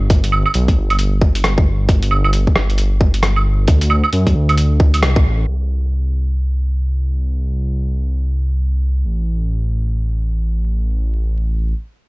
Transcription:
0.00 0.44 G1 loud
0.10 kick loud
0.10 closed hi-hat medium
0.24 closed hi-hat medium
0.32 claves medium
0.46 claves medium
0.54 0.76 B1 medium
0.54 closed hi-hat medium
0.68 kick medium
0.68 closed hi-hat soft
0.76 1.43 G1 medium
0.90 closed hi-hat soft
0.90 claves medium
0.99 closed hi-hat medium
1.22 kick loud
1.35 closed hi-hat medium
1.44 1.88 G1 loud
1.44 cross-stick loud
1.44 closed hi-hat medium
1.58 kick loud
1.89 2.46 G1 loud
1.89 kick loud
1.89 closed hi-hat medium
2.02 closed hi-hat medium
2.11 claves medium
2.24 claves medium
2.33 closed hi-hat medium
2.47 kick medium
2.56 3.67 G1 loud
2.56 cross-stick loud
2.70 closed hi-hat soft
2.78 closed hi-hat medium
3.01 kick loud
3.14 closed hi-hat medium
3.23 cross-stick loud
3.23 closed hi-hat medium
3.36 claves medium
3.67 4.02 D2 loud
3.67 kick loud
3.67 closed hi-hat medium
3.81 closed hi-hat medium
3.90 claves medium
4.04 claves medium
4.13 4.34 F#2 medium
4.13 closed hi-hat medium
4.27 kick medium
4.27 closed hi-hat soft
4.35 5.04 D2 loud
4.49 closed hi-hat soft
4.49 claves medium
4.58 closed hi-hat medium
4.80 kick loud
4.94 closed hi-hat medium
4.94 claves soft
5.02 5.23 C2 medium
5.02 cross-stick loud
5.02 closed hi-hat medium
5.16 kick loud
5.25 5.46 A1 medium
5.47 9.04 C2 medium
9.05 11.74 A1 medium

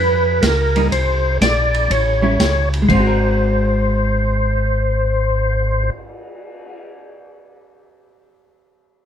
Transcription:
0.00 0.41 F2 medium
0.00 0.44 B4 medium
0.42 0.90 C#2 medium
0.42 0.88 A#4 medium
0.42 kick soft
0.42 snare medium
0.42 hi-hat pedal soft
0.42 ride medium
0.76 0.90 G3 medium
0.76 0.91 A#3 medium
0.76 0.91 D#4 medium
0.76 ride soft
0.91 1.39 C2 medium
0.91 1.37 C5 medium
0.91 kick soft
0.91 ride medium
1.41 1.88 A#1 medium
1.41 1.92 D5 medium
1.41 kick soft
1.41 snare medium
1.41 hi-hat pedal medium
1.41 ride medium
1.74 ride soft
1.90 2.38 A1 medium
1.90 2.69 C#5 medium
1.90 kick soft
1.90 ride medium
2.22 2.37 G3 medium
2.22 2.37 C#4 medium
2.22 2.38 E4 medium
2.39 2.87 C#2 medium
2.39 kick soft
2.39 snare medium
2.39 hi-hat pedal medium
2.39 ride medium
2.74 ride soft
2.82 5.88 G#3 medium
2.89 5.90 G#1 medium
2.89 5.98 C4 soft
2.89 5.90 C5 medium
2.89 kick medium
2.89 crash soft
3.00 6.06 F#4 medium
3.07 6.13 A#4 medium
3.22 cymbal swell soft

